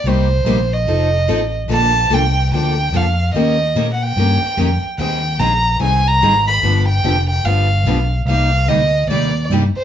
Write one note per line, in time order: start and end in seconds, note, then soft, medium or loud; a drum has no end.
0.04 0.44 C2 medium
0.04 0.26 C3 medium
0.04 0.26 G3 medium
0.04 0.27 A#3 medium
0.04 0.27 D#4 medium
0.04 0.27 G4 medium
0.08 0.74 C5 medium
0.44 0.85 A#1 medium
0.44 0.57 C3 medium
0.44 0.57 G3 medium
0.44 0.57 A#3 medium
0.44 0.58 D#4 medium
0.44 0.58 G4 medium
0.73 1.54 D#5 medium
0.85 1.26 F1 medium
0.85 1.08 F3 medium
0.85 1.08 C4 medium
0.85 1.09 D#4 medium
0.85 1.09 A4 medium
1.28 1.68 A1 medium
1.28 1.39 F3 medium
1.28 1.39 C4 medium
1.28 1.40 D#4 medium
1.28 1.40 A4 medium
1.68 2.09 A#1 medium
1.68 1.89 D3 medium
1.68 1.90 F3 medium
1.68 1.90 A#3 medium
1.68 1.90 D4 medium
1.68 1.91 A4 medium
1.73 2.15 A5 loud
2.10 2.50 C2 medium
2.10 2.21 D3 medium
2.10 2.21 F3 medium
2.10 2.22 A#3 medium
2.10 2.22 D4 medium
2.10 2.22 A4 medium
2.10 2.53 G5 loud
2.52 2.92 D2 medium
2.52 2.73 D3 medium
2.52 2.73 F3 medium
2.52 2.73 A#3 medium
2.52 2.73 D4 medium
2.52 2.74 A4 medium
2.52 2.98 G5 medium
2.92 3.32 F2 medium
2.92 3.04 D3 medium
2.92 3.04 F3 medium
2.92 3.04 A#3 medium
2.92 3.04 D4 medium
2.92 3.04 A4 medium
2.92 3.34 F5 medium
3.34 3.74 D#2 medium
3.34 3.55 D#3 medium
3.34 3.56 A#3 medium
3.34 3.56 C#4 medium
3.34 3.56 G4 medium
3.34 3.56 A#4 medium
3.34 3.88 D#5 medium
3.75 4.15 A#2 medium
3.75 3.86 D#3 medium
3.75 3.87 A#3 medium
3.75 3.87 C#4 medium
3.75 3.87 G4 medium
3.75 3.87 A#4 medium
3.93 4.04 F#5 medium
4.02 4.83 G5 loud
4.16 4.40 G2 medium
4.16 4.37 D#3 medium
4.16 4.38 A#3 medium
4.16 4.38 C#4 medium
4.16 4.38 G4 medium
4.16 4.38 A#4 medium
4.41 muted fingered electric bass stroke soft
4.57 4.81 F2 medium
4.57 4.68 D#3 medium
4.57 4.68 A#3 medium
4.57 4.69 C#4 medium
4.57 4.68 G4 medium
4.57 4.69 A#4 medium
4.82 muted fingered electric bass stroke soft
4.98 5.38 D#2 medium
4.98 5.19 D#3 medium
4.98 5.19 G3 medium
4.98 5.20 C4 medium
4.98 5.20 D#4 medium
4.98 5.20 G#4 medium
4.98 5.41 G5 loud
5.38 5.79 A#1 medium
5.38 5.50 D#3 medium
5.38 5.51 G3 medium
5.38 5.50 C4 medium
5.38 5.51 D#4 medium
5.38 5.51 G#4 medium
5.38 5.80 A#5 loud
5.79 6.20 C2 medium
5.79 6.01 D#3 medium
5.79 6.01 G3 medium
5.79 6.01 C4 medium
5.79 6.01 D#4 medium
5.79 6.01 G#4 medium
5.79 6.09 G#5 medium
6.07 6.47 A#5 loud
6.22 6.61 G#1 medium
6.22 6.33 D#3 medium
6.22 6.33 G3 loud
6.22 6.33 C4 medium
6.22 6.33 D#4 medium
6.22 6.33 G#4 medium
6.47 6.85 B5 loud
6.63 7.02 G1 medium
6.63 6.83 D3 medium
6.63 6.84 F3 medium
6.63 6.84 B3 medium
6.63 6.84 D4 medium
6.63 6.84 G4 medium
6.89 7.26 G5 loud
7.04 7.43 F1 medium
7.04 7.15 D3 medium
7.04 7.15 F3 medium
7.04 7.15 B3 medium
7.04 7.15 D4 medium
7.04 7.16 G4 medium
7.30 7.46 G5 medium
7.44 7.83 G1 medium
7.44 7.65 D3 medium
7.44 7.66 F3 medium
7.44 7.66 B3 medium
7.44 7.66 D4 medium
7.44 7.66 G4 medium
7.44 8.11 F5 loud
7.84 8.24 B1 medium
7.84 7.97 D3 medium
7.84 7.97 F3 medium
7.84 7.97 B3 loud
7.84 7.98 D4 medium
7.84 7.98 G4 medium
8.25 8.66 C2 medium
8.25 8.48 C3 medium
8.25 8.48 G3 medium
8.25 8.49 A#3 medium
8.25 8.49 D#4 medium
8.25 8.70 F5 medium
8.30 8.49 G4 medium
8.67 9.07 D2 medium
8.67 8.79 C3 medium
8.67 8.79 G3 medium
8.67 8.79 A#3 medium
8.67 8.79 D#4 loud
8.67 8.80 G4 medium
8.67 9.09 D#5 loud
9.07 9.48 D#2 medium
9.07 9.30 C3 medium
9.07 9.30 G3 medium
9.07 9.31 A#3 medium
9.07 9.31 D#4 medium
9.07 9.48 D5 medium
9.11 9.31 G4 medium
9.49 9.73 G2 medium
9.49 9.62 C3 medium
9.49 9.62 G3 medium
9.49 9.63 A#3 medium
9.49 9.62 D#4 medium
9.49 9.63 G4 medium
9.75 9.84 C5 medium
9.75 muted fingered electric bass stroke soft